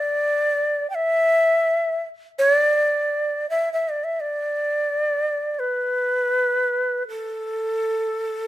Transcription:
Already playing: D5
0.90 G5
0.95 E5
2.39 C#5
2.56 D5
3.50 E5
3.73 E5
3.89 D5
4.04 E5
4.20 D5
5.54 D5
5.59 B4
7.09 A4

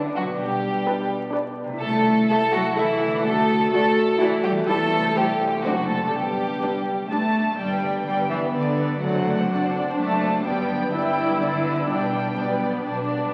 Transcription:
Already playing: G2 D3 B3 D4 B4 D5
0.16 F#3 F#4
0.22 B2
0.26 B3
0.31 D4
0.35 B1 G4 D5
0.40 G3
0.87 D4 B4 D5
1.34 D4 B4 D5
1.64 C3
1.69 A3
1.73 E4
1.77 C2 A4
1.82 A3 E4 A4
2.29 A3 A4 E5
2.52 F#3 F#4
2.75 E3 A3 E4 A4 E5
3.06 D3
3.11 D4
3.15 F#4
3.20 A4
3.24 D2 A3 F#4 A4
3.72 A3 F#4 A4 D5
4.19 E3 A3 E4 F#4 D5
4.43 G3 G4
4.50 E3
4.55 B3
4.59 E4
4.64 G4 A4
4.68 E2 G3 A3 E4 B4
4.98 C3
5.02 C4
5.07 E4
5.11 A4
5.15 C2 G3 A3 E4 G4 C5
5.46 F#2
5.51 C4
5.55 D4
5.60 A4
5.64 F#1 F#3 A3 C4 D4 F#4 C5
5.88 A3 A4
5.95 G2
6.00 B3
6.04 D4 A4
6.08 G4
6.13 G1 G3 B3 G4
6.62 G3 D4 B4
7.10 G3 A3 D4 B4 A5
7.51 A3
7.58 G1 G2 G3 B3 D4 D5 G5
7.71 B4
7.83 D3 D5
7.96 B4
8.06 G1 G3 B3 D5 G5
8.20 B4
8.30 E3 G4 D5 E5
8.44 B4
8.54 G1 D3 D5
8.68 B4
8.79 B3 D5
8.92 B4
9.02 F#1 F#2 F#3 A3 C4 D5 F#5
9.16 C5
9.26 F#3 D5
9.39 C5
9.50 F#1 C4 D4 D5
9.64 C5
9.74 A4 D5
9.88 C5
9.98 F#1 F#3 A3 D5 A5
10.13 C5
10.23 C4 D5
10.36 C5
10.46 G1 G2 G3 B3 D4 D5 G5
10.59 B4
10.70 D3 D5
10.83 B4
10.93 G1 G3 B3 E4 D5 G5
11.06 B4
11.18 G4 D5
11.30 B4
11.41 G1 D3 D5
11.55 B4
11.66 B3 D5
11.79 B4
11.89 B1 B2 G3 D4 D5 G5
12.03 B4
12.14 G3 D5
12.27 B4
12.37 B1 B3 D5
12.50 B4
12.62 G4 D5
12.73 B4
12.85 B1 G3 D4 D5
12.97 B4
13.09 B3 D5
13.20 B4

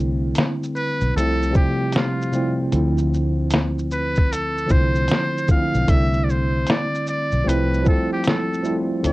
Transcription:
Already playing: C2 D3 G3 A3 C4 E4
0.35 snare, closed hi-hat, shaker
0.63 shaker
0.76 B4, shaker
1.01 B1, shaker
1.16 C2 C3 F3 G3 A3 C4 A4, closed hi-hat, shaker
1.20 E4
1.42 shaker
1.50 C3 F3 G3 A3 C4
1.54 G4, kick, shaker
1.92 F4, snare, closed hi-hat, shaker
2.22 shaker
2.32 C3 F3 G3 A3 C4 E4, shaker
2.72 D2 D3 F3 A3 C4, closed hi-hat, shaker
2.76 E4
2.98 shaker
3.14 shaker
3.51 snare, closed hi-hat, shaker
3.79 shaker
3.91 B4, shaker
4.15 kick, shaker
4.32 A4, closed hi-hat, shaker
4.58 shaker
4.66 D3 F3 A3 C4, shaker
4.71 C2 E4 C5, kick
4.95 shaker
5.08 snare, closed hi-hat, shaker
5.38 shaker
5.48 D3 F3 A3 C4 F5, kick, shaker
5.52 E4
5.74 B1, shaker
5.87 C2 D3 G3 A3 C4 E5, kick, closed hi-hat, shaker
5.91 E4
6.13 shaker
6.24 D5
6.30 C5, shaker
6.67 D5, snare, closed hi-hat, shaker
6.95 shaker
7.07 D5, shaker
7.32 B1, shaker
7.44 C2 F3 G3 A3 C4
7.48 E4 B4, closed hi-hat, shaker
7.74 shaker
7.83 F3 G3 A3 C4 E4, shaker
7.87 A4, kick
8.13 G4
8.24 A4, snare, closed hi-hat, shaker
8.54 shaker
8.63 F3 G3 A3 C4 E4, shaker
9.03 D2 D3 F3 A3 C4 D5, closed hi-hat, shaker
9.07 E4

